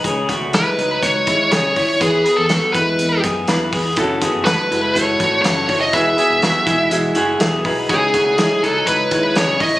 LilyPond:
<<
  \new Staff \with { instrumentName = "Lead electric guitar" } { \time 4/4 \key e \major \tempo 4 = 122 r4 b'4 cis''4 cis''4 | gis'8. a'8. b'4 r4. | r4 b'4 cis''4 cis''8. dis''16 | e''2 r2 |
gis'4. a'8 b'4 cis''8 dis''8 | }
  \new Staff \with { instrumentName = "Upright piano" } { \time 4/4 \key e \major r1 | r1 | <e' fis' a'>8 <e' fis' a'>8 <e' fis' a'>8 <e' fis' a'>8 <e' fis' a'>8 <e' fis' a'>8 <e' fis' a'>8 <e' fis' a'>8 | <e' fis' gis'>8 <e' fis' gis'>8 <e' fis' gis'>8 <e' fis' gis' b''>8 <e' fis' gis' gis''>8 <e' fis' gis' fis''>8 <e' fis' gis' e''>8 <e' fis' gis' e''>8 |
<dis' e' cis''>8 <dis' e' cis''>8 <dis' e' cis''>8 <dis' e' cis''>8 <dis' e' cis''>8 <dis' e' cis''>8 <dis' e' cis''>8 <dis' e' cis''>8 | }
  \new Staff \with { instrumentName = "Clean electric guitar" } { \time 4/4 \key e \major <cis' gis'>8 <a fis'>8 <gis e'>8 <fis dis'>4 <gis e'>8 <cis' gis'>8 <e' cis''>8 | <e' b'>8 <b gis'>8 <b fis'>8 <gis e'>4 <b gis'>8 <e' b'>8 <b gis'>8 | <cis' a'>8 <b gis'>8 <a fis'>8 <gis e'>4 <a fis'>8 <cis' a'>8 <e' cis''>8 | <e' b'>8 <b gis'>8 <b fis'>8 <gis e'>4 <a fis'>8 <b gis'>8 <dis' b'>8 |
<cis' gis'>8 <a fis'>8 <gis e'>8 <fis dis'>4 <gis e'>8 <cis' gis'>8 <e' cis''>8 | }
  \new Staff \with { instrumentName = "Fingered electric bass" } { \clef bass \time 4/4 \key e \major cis,8 r16 cis,8 r16 cis,8 cis,8 dis,8 cis,8 dis,8 | e,8 r16 e,8 r16 e,8 e,8 fis,8 e,8 e,8 | fis,,8 r16 fis,,8 r16 fis,,8 fis,,8 gis,,8 fis,,8 fis,,8 | e,,8 r16 e,,8 r16 e,,8 e,,8 fis,,8 e,,8 b,,8 |
cis,8 r16 cis,8 r16 cis,8 cis,8 dis,8 cis,8 a,,8 | }
  \new DrumStaff \with { instrumentName = "Drums" } \drummode { \time 4/4 <hh bd>8 <hh bd>8 <hh sn>8 hh8 <hh bd>8 <hh bd>8 <hh sn>8 <hho bd>8 | <hh bd>8 hh8 <hh sn>8 <hh bd>8 hh8 <hh bd>8 <hh sn>8 <hho bd>8 | <hh bd>8 <hh bd>8 <hh sn>8 hh8 <hh bd>8 <hh bd>8 <hh sn>8 <hho bd>8 | <hh bd>8 hh8 <hh sn>8 <hh bd>8 hh8 hh8 <hh sn>8 <hho bd>8 |
<hh bd>8 <hh bd>8 <hh sn>8 hh8 <hh bd>8 <hh bd>8 <hh sn>8 <hho bd>8 | }
>>